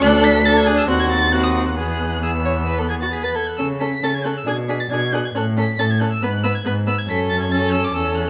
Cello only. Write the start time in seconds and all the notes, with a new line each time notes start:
0.02 D2
0.89 D#2
1.77 E2
3.59 C#3
4.04 C#3
4.47 B2
4.91 B2
5.35 A2
5.80 A2
6.23 G#2
6.66 G#2
7.09 F#2
7.94 E2